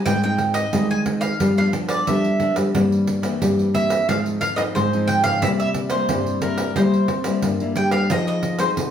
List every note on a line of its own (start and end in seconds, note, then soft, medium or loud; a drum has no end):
0.06 0.70 G#2 soft
0.06 0.16 G3 soft
0.06 0.63 G#3 medium
0.06 0.16 C4 soft
0.06 0.16 D#4 medium
0.06 0.22 G5 loud
0.06 pandeiro medium
0.23 0.68 C4 medium
0.23 0.69 D#4 medium
0.23 0.54 G5 medium
0.23 pandeiro soft
0.38 pandeiro medium
0.54 0.86 D#5 medium
0.54 pandeiro medium
0.73 1.37 D#3 medium
0.73 0.93 G3 medium
0.73 1.30 G#3 loud
0.73 0.93 C4 soft
0.73 0.93 D#4 medium
0.73 pandeiro medium
0.91 1.00 G#5 medium
0.91 pandeiro soft
1.06 1.38 C4 medium
1.06 1.38 D#4 medium
1.06 pandeiro medium
1.21 1.53 F5 medium
1.21 pandeiro medium
1.40 2.04 G2 medium
1.40 1.50 F3 medium
1.40 1.69 G3 loud
1.40 1.51 B3 medium
1.40 1.51 D4 medium
1.40 pandeiro medium
1.58 2.03 F3 medium
1.58 2.03 B3 medium
1.58 2.03 D4 medium
1.58 1.67 F5 medium
1.58 pandeiro soft
1.73 pandeiro medium
1.88 2.06 D5 medium
1.88 pandeiro medium
2.07 2.71 D3 medium
2.07 2.27 F3 medium
2.07 2.50 G3 medium
2.07 2.28 B3 medium
2.07 2.28 D4 medium
2.07 2.54 E5 medium
2.07 pandeiro medium
2.24 pandeiro soft
2.40 2.71 F3 medium
2.40 2.71 B3 medium
2.40 2.72 D4 medium
2.40 pandeiro medium
2.56 2.71 G3 medium
2.56 pandeiro medium
2.74 3.38 G2 medium
2.74 3.20 E3 soft
2.74 3.32 G3 loud
2.74 3.20 A#3 medium
2.74 3.20 C4 medium
2.74 pandeiro medium
2.92 pandeiro soft
3.07 pandeiro medium
3.22 3.69 E3 medium
3.22 3.69 A#3 medium
3.22 3.69 C4 medium
3.22 pandeiro medium
3.41 4.05 G2 medium
3.41 3.99 G3 loud
3.41 pandeiro medium
3.59 pandeiro soft
3.74 4.03 E3 medium
3.74 4.03 A#3 medium
3.74 4.03 C4 medium
3.74 4.08 E5 medium
3.74 pandeiro medium
3.90 pandeiro medium
4.09 4.72 G#2 medium
4.09 4.54 F3 medium
4.09 4.37 G#3 medium
4.09 4.54 C4 medium
4.09 4.54 D#4 medium
4.09 4.18 F5 medium
4.09 pandeiro medium
4.26 pandeiro soft
4.41 4.59 F5 medium
4.41 pandeiro medium
4.56 4.86 F3 medium
4.56 4.86 C4 medium
4.56 4.87 D#4 medium
4.56 4.61 D#5 medium
4.56 pandeiro medium
4.75 5.39 G#2 medium
4.75 5.18 G#3 medium
4.75 5.07 C5 medium
4.75 pandeiro medium
4.93 5.38 F3 medium
4.93 5.38 C4 medium
4.93 5.38 D#4 medium
4.93 pandeiro soft
5.08 5.23 G5 loud
5.08 pandeiro medium
5.24 5.39 C#3 medium
5.24 5.40 F5 loud
5.24 pandeiro medium
5.42 6.06 C3 medium
5.42 6.00 C3 loud
5.42 5.88 G3 medium
5.42 5.88 A#3 medium
5.42 5.88 E4 medium
5.42 5.47 E5 medium
5.42 pandeiro medium
5.60 5.69 E5 medium
5.60 pandeiro soft
5.74 pandeiro medium
5.90 6.37 G3 medium
5.90 6.37 A#3 medium
5.90 6.37 E4 medium
5.90 6.38 C5 medium
5.90 pandeiro medium
6.09 6.73 G2 medium
6.09 6.67 C3 medium
6.09 pandeiro medium
6.26 pandeiro soft
6.42 6.71 G3 medium
6.42 6.71 A#3 medium
6.42 6.71 E4 medium
6.42 6.76 A#4 medium
6.42 pandeiro medium
6.58 pandeiro medium
6.76 7.40 C3 medium
6.76 7.05 G3 medium
6.76 7.08 G3 medium
6.76 7.08 A#3 medium
6.76 7.08 E4 medium
6.76 7.39 C5 medium
6.76 pandeiro medium
6.94 pandeiro soft
7.08 7.40 C4 medium
7.08 pandeiro medium
7.24 7.54 G3 medium
7.24 7.54 A#3 medium
7.24 7.55 E4 medium
7.24 pandeiro medium
7.42 8.07 G2 medium
7.42 7.74 A#3 medium
7.42 pandeiro medium
7.60 8.05 G3 medium
7.60 8.06 A#3 medium
7.60 8.06 E4 medium
7.60 pandeiro soft
7.75 8.07 G3 medium
7.75 7.92 G5 loud
7.75 pandeiro medium
7.91 8.08 F5 medium
7.91 pandeiro medium
8.10 8.67 F3 medium
8.10 8.74 F3 medium
8.10 8.55 C4 medium
8.10 8.56 D#4 medium
8.10 8.56 G#4 medium
8.10 8.26 D#5 medium
8.10 pandeiro medium
8.27 8.59 D#5 medium
8.27 pandeiro soft
8.43 pandeiro medium
8.59 8.91 C4 medium
8.59 8.91 D#4 medium
8.59 8.91 G#4 medium
8.59 8.69 C5 medium
8.59 pandeiro medium
8.77 8.91 C3 medium
8.77 8.91 D3 medium
8.77 pandeiro medium